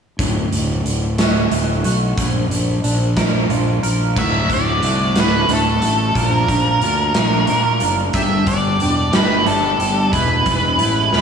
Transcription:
0.19 0.51 D1 medium
0.19 1.85 D2 medium
0.19 kick medium
0.19 closed hi-hat medium
0.51 0.83 D1 medium
0.51 closed hi-hat medium
0.84 1.48 D1 medium
0.84 2.17 D3 medium
0.84 closed hi-hat medium
1.18 1.84 F#4 medium
1.18 snare medium
1.18 closed hi-hat medium
1.51 1.83 D1 medium
1.51 2.18 A3 medium
1.51 closed hi-hat medium
1.84 2.16 B1 medium
1.84 2.18 F#4 medium
1.84 closed hi-hat medium
2.17 2.49 A#1 medium
2.17 3.83 A#2 medium
2.17 kick medium
2.17 closed hi-hat medium
2.50 2.82 A#1 medium
2.50 closed hi-hat medium
2.83 3.47 A#1 medium
2.83 4.16 D4 medium
2.83 closed hi-hat medium
3.17 3.82 A#4 medium
3.17 kick medium
3.17 snare medium
3.17 closed hi-hat medium
3.50 3.82 A#1 medium
3.50 4.16 F4 medium
3.50 closed hi-hat medium
3.83 4.15 A#1 medium
3.83 4.16 A#4 medium
3.83 closed hi-hat medium
4.16 4.46 D1 medium
4.16 4.82 D2 medium
4.16 4.81 A2 medium
4.16 4.50 D3 medium
4.16 4.50 A3 medium
4.16 4.48 F#4 medium
4.16 4.52 E5 medium
4.16 kick medium
4.16 crash medium
4.49 4.79 D1 medium
4.49 4.82 D3 medium
4.49 4.83 A3 medium
4.49 4.83 F#4 medium
4.49 5.20 D5 medium
4.49 kick medium
4.49 closed hi-hat medium
4.82 5.12 C2 medium
4.82 5.47 A2 medium
4.82 5.17 D3 medium
4.82 5.16 A3 medium
4.82 5.14 F#4 medium
4.82 closed hi-hat medium
5.15 5.45 D1 medium
5.15 5.48 D3 soft
5.15 5.49 A3 medium
5.15 5.49 F#4 medium
5.15 snare medium
5.15 closed hi-hat medium
5.20 5.52 B4 medium
5.48 5.78 D1 medium
5.48 6.13 A2 medium
5.48 5.83 D3 medium
5.48 5.82 A3 medium
5.48 5.81 F#4 medium
5.48 closed hi-hat medium
5.53 6.13 A4 medium
5.82 6.12 A1 medium
5.82 6.14 D3 soft
5.82 6.14 A3 medium
5.82 6.13 F#4 medium
5.82 closed hi-hat medium
6.15 6.45 A#1 medium
6.15 6.81 A#2 medium
6.15 6.82 F3 medium
6.15 6.50 A#3 medium
6.15 6.50 D4 medium
6.15 6.49 F4 medium
6.15 6.48 A#4 medium
6.15 kick medium
6.15 closed hi-hat medium
6.19 7.79 A#4 medium
6.49 6.78 A#1 medium
6.49 6.81 A#3 soft
6.49 6.82 D4 medium
6.49 6.82 F4 medium
6.49 6.83 A#4 medium
6.49 kick medium
6.49 closed hi-hat medium
6.81 7.11 D2 medium
6.81 7.15 A#3 medium
6.81 7.15 D4 medium
6.81 7.14 F4 medium
6.81 7.13 A#4 medium
6.81 closed hi-hat medium
7.14 7.45 A#1 medium
7.14 7.46 A#3 soft
7.14 7.47 D4 medium
7.14 7.48 F4 medium
7.14 7.48 A#4 medium
7.14 snare loud
7.14 closed hi-hat medium
7.47 7.78 A#2 medium
7.47 7.82 A#3 medium
7.47 7.81 D4 medium
7.47 7.80 F4 medium
7.47 7.80 A#4 medium
7.47 closed hi-hat medium
7.80 8.11 F#1 medium
7.80 8.13 A#3 soft
7.80 8.13 D4 medium
7.80 8.12 F4 medium
7.80 8.12 A#4 medium
7.80 closed hi-hat medium
8.13 8.44 G1 medium
8.13 8.80 G2 medium
8.13 8.81 D3 medium
8.13 8.47 G3 medium
8.13 8.48 B3 medium
8.13 8.46 D4 medium
8.13 8.45 G4 medium
8.13 8.47 E5 medium
8.13 kick medium
8.13 closed hi-hat medium
8.46 8.77 G1 medium
8.46 8.79 G3 soft
8.46 8.80 B3 medium
8.46 8.80 D4 medium
8.46 8.81 G4 medium
8.46 9.16 D5 medium
8.46 kick medium
8.46 closed hi-hat medium
8.80 9.11 E1 medium
8.80 9.15 G3 medium
8.80 9.14 B3 medium
8.80 9.13 D4 medium
8.80 9.12 G4 medium
8.80 closed hi-hat medium
9.13 9.44 G1 medium
9.13 9.45 G3 medium
9.13 9.46 B3 medium
9.13 9.47 D4 medium
9.13 9.47 G4 medium
9.13 9.47 B4 medium
9.13 snare medium
9.13 closed hi-hat medium
9.46 9.77 G1 medium
9.46 9.81 G3 medium
9.46 9.80 B3 medium
9.46 9.80 D4 medium
9.46 9.79 G4 medium
9.46 10.13 A4 medium
9.46 closed hi-hat medium
9.80 10.10 G1 medium
9.80 10.12 G3 medium
9.80 10.12 B3 medium
9.80 10.12 D4 medium
9.80 10.11 G4 medium
9.80 closed hi-hat soft
10.12 10.43 E1 medium
10.12 10.79 E2 medium
10.12 10.79 B2 medium
10.12 10.46 E3 medium
10.12 10.46 G#3 medium
10.12 10.45 B3 medium
10.12 10.45 E4 medium
10.12 11.21 B4 medium
10.12 kick medium
10.12 closed hi-hat medium
10.46 10.76 E1 medium
10.46 10.77 E3 medium
10.46 10.78 G#3 medium
10.46 10.78 B3 medium
10.46 10.79 E4 medium
10.46 kick medium
10.46 closed hi-hat medium
10.78 11.10 A1 medium
10.78 11.13 E3 medium
10.78 11.13 G#3 medium
10.78 11.12 B3 medium
10.78 11.11 E4 medium
10.78 closed hi-hat medium
11.12 11.21 E1 medium
11.12 11.21 E3 medium
11.12 11.21 G#3 medium
11.12 11.21 B3 medium
11.12 11.21 E4 medium
11.12 snare medium

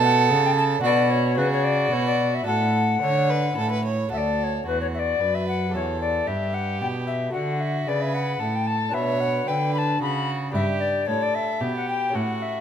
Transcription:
0.00 0.26 B2 medium
0.00 0.32 B2 medium
0.00 0.77 C#4 medium
0.00 0.78 G4 medium
0.00 0.79 A4 medium
0.00 0.81 A4 loud
0.00 0.43 F#5 loud
0.29 0.79 C#3 medium
0.29 0.83 C#3 medium
0.45 0.51 G5 medium
0.57 0.63 A5 loud
0.79 2.40 D4 medium
0.79 2.41 F#4 medium
0.83 1.39 B2 medium
0.83 1.33 B2 medium
0.83 1.36 F#4 medium
0.83 1.12 D5 loud
1.10 1.39 C#5 loud
1.37 1.91 C#3 medium
1.37 1.88 C#3 medium
1.37 2.45 F#4 medium
1.37 1.51 B4 medium
1.52 1.65 C#5 medium
1.63 1.94 D5 medium
1.91 2.42 B2 medium
1.91 2.46 B2 medium
1.91 2.05 C#5 loud
2.06 2.36 D5 medium
2.34 2.46 E5 medium
2.42 3.51 D4 soft
2.42 3.52 F#4 soft
2.42 3.53 A4 soft
2.46 2.98 A2 medium
2.46 3.01 A2 medium
2.46 2.95 A4 medium
2.46 3.82 F#5 medium
3.02 3.56 D3 medium
3.02 3.54 D3 medium
3.02 3.31 C#5 medium
3.30 3.57 B4 medium
3.52 4.08 C#4 medium
3.52 4.09 E4 soft
3.52 4.10 A4 soft
3.57 4.11 A2 medium
3.57 4.08 A2 medium
3.57 3.71 A4 medium
3.72 3.85 B4 medium
3.86 4.12 C#5 medium
4.08 4.62 D2 medium
4.08 4.63 A3 soft
4.08 5.68 F#4 soft
4.08 5.69 A4 soft
4.12 4.62 D2 soft
4.12 4.63 A4 medium
4.12 4.18 E5 medium
4.17 4.39 D5 medium
4.39 4.66 C#5 medium
4.39 4.44 D5 medium
4.66 5.19 E2 soft
4.66 5.16 E2 soft
4.66 5.22 F#4 soft
4.66 4.80 B4 medium
4.81 4.86 C#5 medium
4.94 5.00 E5 medium
4.99 5.36 D5 medium
5.20 5.75 F#2 medium
5.20 5.70 F#2 soft
5.20 5.75 B4 medium
5.34 5.47 E5 medium
5.48 5.73 F#5 medium
5.69 6.75 A3 soft
5.69 7.28 G4 soft
5.69 7.29 A4 soft
5.73 6.23 E2 soft
5.73 6.27 E2 medium
5.73 6.29 A4 soft
5.73 6.00 C#5 medium
6.00 6.28 D5 medium
6.27 6.76 G2 soft
6.27 6.83 G2 soft
6.27 7.33 G4 medium
6.27 6.55 E5 medium
6.54 6.80 F#5 medium
6.80 7.33 B2 soft
6.80 7.30 B2 soft
6.80 6.86 G5 medium
7.07 7.33 E5 medium
7.29 7.83 A3 soft
7.29 8.88 F#4 soft
7.29 8.89 A4 soft
7.29 7.62 F#5 medium
7.34 7.83 D3 soft
7.34 7.86 D3 medium
7.34 7.90 F#4 medium
7.60 7.89 E5 medium
7.87 8.37 C#3 soft
7.87 8.40 C#3 medium
7.87 8.41 B4 medium
7.87 8.03 D5 medium
8.01 8.15 E5 medium
8.14 8.56 F#5 medium
8.40 8.90 A2 medium
8.40 8.93 A2 medium
8.40 8.94 A4 medium
8.55 8.68 G5 medium
8.66 8.95 A5 medium
8.89 10.48 D4 soft
8.89 10.48 F#4 soft
8.89 10.49 B4 soft
8.93 9.43 B2 soft
8.93 9.46 B2 medium
8.93 9.49 C#5 medium
8.93 9.21 E5 medium
9.20 9.49 F#5 medium
9.47 10.00 D3 medium
9.47 9.97 D3 soft
9.47 10.01 B4 medium
9.47 9.73 G5 medium
9.74 9.79 B5 medium
9.78 10.00 A5 medium
10.01 10.53 C#3 medium
10.01 10.50 C#3 medium
10.01 10.54 F#4 medium
10.01 10.30 B5 medium
10.50 11.04 G2 medium
10.50 12.09 D4 soft
10.50 12.09 G4 soft
10.50 12.10 B4 soft
10.50 10.82 E5 medium
10.54 11.04 G2 soft
10.54 11.07 G4 medium
10.80 11.08 D5 medium
11.07 11.57 A2 medium
11.07 11.57 A2 soft
11.07 11.62 A4 medium
11.07 11.24 C#5 medium
11.22 11.36 D5 medium
11.34 11.75 E5 medium
11.61 12.11 B2 medium
11.61 12.16 G4 medium
11.76 11.88 F#5 medium
11.88 12.16 G5 medium
12.10 12.61 C#4 soft
12.10 12.61 G4 soft
12.10 12.61 A4 soft
12.15 12.61 A2 medium
12.15 12.61 F#4 medium
12.15 12.43 F#5 medium
12.42 12.61 E5 medium

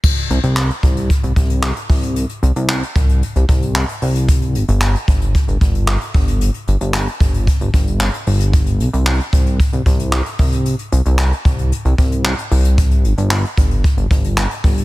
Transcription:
0.04 kick loud
0.04 crash medium
0.17 closed hi-hat medium
0.30 0.39 C2 medium
0.30 closed hi-hat medium
0.43 0.70 C2 loud
0.43 closed hi-hat medium
0.57 clap loud
0.57 closed hi-hat loud
0.70 closed hi-hat soft
0.83 1.10 C2 medium
0.83 kick loud
0.83 closed hi-hat medium
0.97 closed hi-hat medium
1.10 kick medium
1.10 closed hi-hat medium
1.23 1.32 C2 medium
1.23 closed hi-hat medium
1.36 1.72 C2 loud
1.36 kick loud
1.36 closed hi-hat medium
1.50 closed hi-hat medium
1.63 clap loud
1.63 closed hi-hat medium
1.76 closed hi-hat medium
1.89 2.25 C2 medium
1.89 kick medium
1.89 open hi-hat medium
2.03 closed hi-hat medium
2.16 closed hi-hat medium
2.29 closed hi-hat medium
2.43 2.52 C2 medium
2.43 closed hi-hat medium
2.56 2.83 C2 loud
2.56 closed hi-hat medium
2.69 clap loud
2.69 closed hi-hat loud
2.83 closed hi-hat soft
2.96 3.23 C2 medium
2.96 kick loud
2.96 closed hi-hat medium
3.09 closed hi-hat medium
3.23 closed hi-hat medium
3.36 3.45 C2 medium
3.36 closed hi-hat soft
3.49 3.85 C2 loud
3.49 kick medium
3.49 closed hi-hat medium
3.62 closed hi-hat medium
3.76 clap loud
3.76 closed hi-hat medium
3.89 closed hi-hat medium
4.02 4.57 C2 medium
4.02 open hi-hat medium
4.15 closed hi-hat medium
4.28 kick loud
4.28 closed hi-hat loud
4.42 closed hi-hat medium
4.55 4.64 G1 medium
4.55 closed hi-hat medium
4.68 4.95 G1 loud
4.68 closed hi-hat medium
4.81 clap loud
4.81 closed hi-hat loud
4.95 closed hi-hat soft
5.08 5.35 G1 medium
5.08 kick loud
5.08 closed hi-hat medium
5.21 closed hi-hat medium
5.35 kick medium
5.35 closed hi-hat medium
5.48 5.57 G1 medium
5.48 closed hi-hat medium
5.61 5.97 G1 loud
5.61 kick medium
5.61 closed hi-hat medium
5.75 closed hi-hat medium
5.88 clap loud
5.88 closed hi-hat medium
6.01 closed hi-hat medium
6.14 6.50 G1 loud
6.14 kick loud
6.14 open hi-hat medium
6.28 closed hi-hat medium
6.41 closed hi-hat medium
6.54 closed hi-hat medium
6.68 6.77 G1 loud
6.68 closed hi-hat medium
6.81 7.08 G1 loud
6.81 closed hi-hat medium
6.94 clap loud
6.94 closed hi-hat loud
7.08 closed hi-hat soft
7.20 7.47 G1 loud
7.20 kick loud
7.20 closed hi-hat medium
7.34 closed hi-hat medium
7.47 kick medium
7.47 closed hi-hat medium
7.61 7.70 G1 medium
7.61 closed hi-hat medium
7.74 8.10 G1 loud
7.74 kick medium
7.74 closed hi-hat medium
7.87 closed hi-hat medium
8.00 clap loud
8.00 closed hi-hat medium
8.14 closed hi-hat medium
8.27 8.81 G1 medium
8.27 open hi-hat medium
8.40 closed hi-hat medium
8.53 kick loud
8.53 closed hi-hat medium
8.66 closed hi-hat medium
8.80 8.89 C2 medium
8.80 closed hi-hat medium
8.93 9.20 C2 loud
8.93 closed hi-hat medium
9.06 clap loud
9.06 closed hi-hat loud
9.20 closed hi-hat soft
9.33 9.60 C2 medium
9.33 kick loud
9.33 closed hi-hat medium
9.46 closed hi-hat medium
9.60 kick medium
9.60 closed hi-hat medium
9.73 9.82 C2 medium
9.73 closed hi-hat soft
9.86 10.22 C2 loud
9.86 kick medium
9.86 closed hi-hat medium
9.99 closed hi-hat medium
10.13 clap loud
10.13 closed hi-hat medium
10.26 closed hi-hat medium
10.39 10.75 C2 loud
10.39 kick medium
10.39 open hi-hat medium
10.52 closed hi-hat medium
10.66 closed hi-hat loud
10.79 closed hi-hat medium
10.92 11.01 C2 medium
10.92 closed hi-hat medium
11.05 11.32 C2 loud
11.05 closed hi-hat medium
11.19 clap loud
11.19 closed hi-hat loud
11.33 closed hi-hat soft
11.45 11.72 C2 medium
11.45 kick loud
11.45 closed hi-hat medium
11.59 closed hi-hat medium
11.72 closed hi-hat medium
11.85 11.94 C2 medium
11.85 closed hi-hat medium
11.98 12.34 C2 loud
11.98 kick medium
11.98 closed hi-hat medium
12.12 closed hi-hat medium
12.25 clap loud
12.25 closed hi-hat medium
12.38 closed hi-hat medium
12.51 13.06 C2 loud
12.51 open hi-hat medium
12.65 closed hi-hat medium
12.78 kick loud
12.78 closed hi-hat loud
12.91 closed hi-hat medium
13.04 13.13 G1 loud
13.04 closed hi-hat medium
13.18 13.45 G1 loud
13.18 closed hi-hat medium
13.31 clap loud
13.31 closed hi-hat loud
13.45 closed hi-hat soft
13.57 13.85 G1 medium
13.57 kick loud
13.57 closed hi-hat medium
13.71 closed hi-hat medium
13.84 kick medium
13.84 closed hi-hat medium
13.97 14.06 G1 medium
13.97 closed hi-hat medium
14.11 14.47 G1 loud
14.11 kick medium
14.11 closed hi-hat medium
14.24 closed hi-hat medium
14.38 clap loud
14.38 closed hi-hat medium
14.51 closed hi-hat medium
14.64 14.85 G1 medium
14.64 kick loud
14.64 open hi-hat medium
14.78 closed hi-hat medium

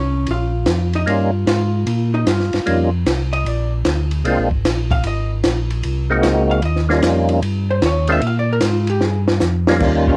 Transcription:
0.00 0.27 C2 medium
0.00 0.51 C#4 medium
0.00 0.51 C#5 medium
0.27 0.67 A#1 medium
0.27 ride medium
0.31 0.91 F4 medium
0.31 0.91 F5 medium
0.66 1.06 F2 loud
0.66 snare medium
0.66 hi-hat pedal medium
0.66 ride medium
0.93 1.08 D#4 medium
0.93 1.08 D#5 medium
0.93 ride medium
1.06 1.45 G2 medium
1.06 1.31 G3 medium
1.06 1.31 A#3 medium
1.06 1.31 C#4 medium
1.06 1.31 D#4 medium
1.06 1.31 F4 medium
1.06 1.48 F4 medium
1.06 1.48 F5 medium
1.06 ride medium
1.46 1.85 G#2 medium
1.46 2.10 F4 medium
1.46 2.10 F5 medium
1.46 snare medium
1.46 hi-hat pedal medium
1.46 ride medium
1.87 2.25 A#2 medium
1.87 ride medium
2.14 2.27 D#4 medium
2.14 2.27 D#5 medium
2.26 2.51 G2 medium
2.26 2.90 F4 medium
2.26 2.90 F5 medium
2.26 snare medium
2.26 hi-hat pedal medium
2.26 ride medium
2.40 snare soft
2.53 2.60 G2 soft
2.53 snare soft
2.53 ride medium
2.66 3.05 F2 medium
2.66 2.90 G3 medium
2.66 2.90 A#3 medium
2.66 2.90 C#4 medium
2.66 2.90 D#4 soft
2.66 2.90 F4 medium
2.66 ride medium
3.06 3.44 C2 medium
3.06 snare medium
3.06 hi-hat pedal medium
3.06 ride medium
3.33 3.47 D#5 medium
3.33 ride soft
3.45 3.84 A#1 medium
3.45 3.72 D5 medium
3.45 ride medium
3.85 4.24 D2 loud
3.85 snare medium
3.85 hi-hat pedal medium
3.85 ride medium
4.11 ride medium
4.24 4.37 C2 medium
4.24 4.49 G#3 medium
4.24 4.49 A#3 medium
4.24 4.49 C4 medium
4.24 4.49 D4 medium
4.24 4.50 F4 medium
4.24 ride medium
4.38 4.51 A#1 medium
4.51 4.64 G#1 medium
4.51 kick soft
4.64 5.03 A#1 medium
4.64 snare medium
4.64 hi-hat pedal medium
4.64 ride medium
4.91 5.04 F5 loud
4.91 kick medium
4.91 ride medium
5.03 5.43 G#1 medium
5.03 5.31 D#5 medium
5.03 ride medium
5.43 5.83 A#1 medium
5.43 snare medium
5.43 hi-hat pedal medium
5.43 ride medium
5.70 ride soft
5.83 6.23 C2 medium
5.83 ride medium
6.10 6.61 G#3 medium
6.10 6.61 A#3 medium
6.10 6.61 C4 medium
6.10 6.61 D#4 medium
6.10 6.61 F#4 medium
6.23 6.62 C#2 medium
6.23 snare medium
6.23 hi-hat pedal medium
6.23 ride medium
6.51 6.64 F5 loud
6.62 7.02 D#2 loud
6.62 6.81 D#5 medium
6.62 ride medium
6.76 snare soft
6.89 7.40 G3 medium
6.89 7.40 A#3 medium
6.89 7.40 C#4 medium
6.89 7.41 D#4 medium
6.89 7.40 F4 medium
6.89 snare soft
7.03 7.42 F2 medium
7.03 snare medium
7.03 hi-hat pedal medium
7.03 ride medium
7.29 ride soft
7.42 7.81 G2 medium
7.42 ride medium
7.70 7.83 C5 medium
7.82 8.21 D#2 medium
7.82 snare medium
7.82 hi-hat pedal medium
7.82 ride medium
7.86 8.10 C#5 medium
8.07 8.21 G#3 medium
8.07 8.21 A#3 medium
8.07 8.21 C4 medium
8.07 8.21 D4 medium
8.07 8.21 F4 medium
8.07 ride medium
8.12 8.24 E5 medium
8.21 8.61 A#2 medium
8.21 ride medium
8.27 8.38 F5 loud
8.39 8.50 D5 medium
8.53 8.64 A#4 loud
8.61 9.01 G#2 medium
8.61 snare medium
8.61 hi-hat pedal medium
8.61 ride medium
8.65 8.90 F4 medium
8.87 9.05 G4 medium
8.87 ride medium
9.01 9.40 G2 medium
9.01 snare medium
9.05 9.20 G#4 medium
9.28 snare medium
9.40 9.80 F2 loud
9.40 snare medium
9.40 hi-hat pedal medium
9.67 10.17 G3 medium
9.67 10.17 A#3 medium
9.67 10.17 C#4 medium
9.67 10.17 D#4 medium
9.67 10.17 F4 medium
9.67 snare loud
9.80 10.17 D#2 medium
9.80 kick medium
9.80 snare soft
9.80 crash medium
10.07 10.17 D#3 medium
10.07 10.17 G3 medium
10.07 10.17 C#4 medium
10.07 10.17 F4 medium
10.07 kick medium

